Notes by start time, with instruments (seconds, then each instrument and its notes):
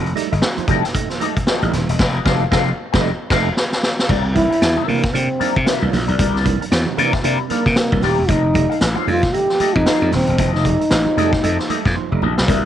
Already playing: slap bass F1
0.06 closed hi-hat
0.15 tonewheel organ G3 A3 D#4, muted clean electric guitar stroke, closed hi-hat, muted conga, high conga
0.31 slap bass G1, tonewheel organ A3 D#4, clean electric guitar G4 A4 D#5, closed hi-hat
0.41 tonewheel organ A3 D#4, muted clean electric guitar stroke, snare, muted conga
0.57 tonewheel organ F3, muted slap bass stroke, muted clean electric guitar stroke, closed hi-hat, high conga
0.68 slap bass F1, tonewheel organ G3 A3 D#4, clean electric guitar G4 A4 D#5, kick, closed hi-hat, muted conga, low conga
0.84 muted clean electric guitar stroke, snare, closed hi-hat
0.94 tonewheel organ A3 D#4, kick, closed hi-hat, muted conga
1.10 tonewheel organ F3, muted clean electric guitar stroke, snare, closed hi-hat
1.20 tonewheel organ A3 D#4, clean electric guitar G4 A4 D#5, closed hi-hat, high conga
1.37 muted clean electric guitar stroke, kick, closed hi-hat
1.46 tonewheel organ F3, clean electric guitar G4 A4 D#5, snare, muted conga
1.62 slap bass A1, tonewheel organ G3 A3 D#4, closed hi-hat
1.72 slap bass D#1, tonewheel organ A3 D#4, muted clean electric guitar stroke, snare, closed hi-hat, muted conga, high conga, low conga
1.89 slap bass E1, clean electric guitar G4 A4 D#5, closed hi-hat
1.99 slap bass F1, clean electric guitar G4 A4 D#5, kick, snare, crash
2.25 slap bass F1, tonewheel organ G3 A3 D#4, clean electric guitar G4 A4 F5, kick, snare
2.51 slap bass F1, tonewheel organ A3 D#4, clean electric guitar G4 A4 F5, kick, snare
2.92 slap bass F1, tonewheel organ G3 A3 D#4, clean electric guitar G4 A4 D#5, kick, snare
3.30 slap bass F1, tonewheel organ A3 D#4, clean electric guitar G4 A4 F5, kick, snare, crash
3.57 snare
3.72 snare
3.83 snare
3.99 snare
4.08 slap bass C2, tonewheel organ C3, clean electric guitar E4 A#4 D5, kick, crash, low conga
4.24 muted clean electric guitar stroke
4.35 tonewheel organ E3 A#3 D4, trombone E4, muted clean electric guitar stroke, kick, closed hi-hat, muted conga, high conga
4.50 tonewheel organ A#3 D4, clean electric guitar E4 A#4 E5, closed hi-hat
4.60 slap bass E2, tonewheel organ A#3 D4, muted clean electric guitar stroke, snare, closed hi-hat, muted conga
4.76 tonewheel organ C3, clean electric guitar E4 A#4 E5, high conga
4.86 slap bass C3, tonewheel organ E3 A#3 D4, trombone A#3, muted clean electric guitar stroke, open hi-hat, muted conga, low conga
5.02 muted clean electric guitar stroke, kick, snare
5.13 slap bass C3, tonewheel organ A#3 D4, trombone C4, closed hi-hat, muted conga
5.29 tonewheel organ C3, muted clean electric guitar stroke
5.39 tonewheel organ A#3 D4, clean electric guitar E4 A#4 D5, muted slap bass stroke, closed hi-hat, muted conga, high conga
5.54 slap bass C3, muted clean electric guitar stroke, kick
5.64 tonewheel organ C3, clean electric guitar E4 A#4 E5, snare, closed hi-hat, muted conga, high conga
5.82 slap bass C2, tonewheel organ E3 A#3 D4
5.91 slap bass A#1, tonewheel organ A#3 D4, muted clean electric guitar stroke, snare, open hi-hat, muted conga, high conga, low conga
6.07 slap bass B1, clean electric guitar E4 A#4 D5, closed hi-hat
6.18 slap bass C2, tonewheel organ C3, clean electric guitar E4 A#4 D5, kick, closed hi-hat, low conga
6.36 snare
6.45 tonewheel organ E3 A#3 D4, kick, closed hi-hat, muted conga, high conga
6.60 tonewheel organ A#3 D4, muted clean electric guitar stroke, closed hi-hat
6.71 slap bass E2, tonewheel organ A#3 D4, muted clean electric guitar stroke, snare, closed hi-hat, muted conga
6.86 tonewheel organ C3, muted clean electric guitar stroke, high conga
6.97 slap bass C3, tonewheel organ E3 A#3 D4, clean electric guitar E4 A#4 D5, closed hi-hat, muted conga, low conga
7.13 muted clean electric guitar stroke, kick, snare
7.23 slap bass C3, tonewheel organ A#3 D4, clean electric guitar E4 A#4 D5, closed hi-hat, muted conga
7.39 tonewheel organ C3, muted clean electric guitar stroke
7.49 trombone A#3, tonewheel organ A#3 D4, clean electric guitar E4 A#4 D5, muted slap bass stroke, closed hi-hat, high conga
7.66 slap bass C3, muted clean electric guitar stroke, kick, snare
7.76 tonewheel organ C3, snare, closed hi-hat, muted conga, high conga
7.92 slap bass C2, tonewheel organ E3 A#3 D4, muted clean electric guitar stroke, kick
8.01 slap bass D#1, tonewheel organ A#3 D4, clean electric guitar E4 A#4 D5, trombone G4, snare, open hi-hat, high conga, low conga
8.17 slap bass E1, muted clean electric guitar stroke
8.28 slap bass F1, tonewheel organ F3, trombone D#4, clean electric guitar G4 A4 D#5, kick, closed hi-hat, muted conga, low conga
8.44 muted clean electric guitar stroke
8.54 tonewheel organ G3 A3 D#4, muted clean electric guitar stroke, kick, closed hi-hat, muted conga, high conga
8.69 tonewheel organ A3 D#4, clean electric guitar G4 A4 F5, closed hi-hat
8.80 slap bass A1, tonewheel organ A3 D#4, muted clean electric guitar stroke, snare, closed hi-hat
8.96 tonewheel organ F3, clean electric guitar G4 A4 F5, high conga
9.06 slap bass F2, tonewheel organ G3 A3 D#4, trombone F4, muted clean electric guitar stroke, open hi-hat, low conga
9.22 muted clean electric guitar stroke, kick, snare
9.33 tonewheel organ A3 D#4, trombone G4, closed hi-hat, muted conga
9.48 tonewheel organ F3, muted clean electric guitar stroke, snare
9.59 tonewheel organ A3 D#4, clean electric guitar G4 A4 D#5, muted slap bass stroke, closed hi-hat, high conga
9.76 slap bass F2, trombone D#4, muted clean electric guitar stroke, kick
9.86 tonewheel organ F3, clean electric guitar G4 A4 F5, snare, closed hi-hat, muted conga, high conga
10.02 slap bass F2, tonewheel organ G3 A3 D#4
10.12 slap bass D#1, tonewheel organ A3 D#4, trombone C4, muted clean electric guitar stroke, snare, open hi-hat, high conga, low conga
10.27 slap bass E1, clean electric guitar G4 A4 D#5, closed hi-hat
10.37 slap bass F1, tonewheel organ F3, clean electric guitar G4 A4 D#5, kick, closed hi-hat, muted conga, low conga
10.54 trombone D#4, snare
10.64 tonewheel organ G3 A3 D#4, kick, closed hi-hat, muted conga, high conga
10.80 tonewheel organ A3 D#4, muted clean electric guitar stroke, closed hi-hat
10.91 slap bass A1, tonewheel organ A3 D#4, muted clean electric guitar stroke, snare, closed hi-hat, muted conga
11.06 tonewheel organ F3, muted clean electric guitar stroke, high conga
11.17 slap bass F2, tonewheel organ G3 A3 D#4, clean electric guitar G4 A4 D#5, closed hi-hat, muted conga, low conga
11.33 muted clean electric guitar stroke, kick, snare
11.42 slap bass F2, tonewheel organ A3 D#4, clean electric guitar G4 A4 D#5, closed hi-hat, muted conga
11.58 tonewheel organ F3, muted clean electric guitar stroke, snare
11.69 tonewheel organ A3 D#4, clean electric guitar G4 A4 D#5, muted slap bass stroke, closed hi-hat, muted conga, high conga
11.85 slap bass F2, muted clean electric guitar stroke, kick, snare
11.95 tonewheel organ F3, muted clean electric guitar stroke, muted conga, high conga
12.11 slap bass F1, tonewheel organ G3 A3 D#4, muted clean electric guitar stroke
12.22 slap bass A#1, tonewheel organ A3 D#4, clean electric guitar G4 A4 D#5, high conga, low conga
12.37 slap bass B1, muted clean electric guitar stroke, snare
12.47 slap bass C2, tonewheel organ C3, clean electric guitar A#4 D5 E5, kick, closed hi-hat, low conga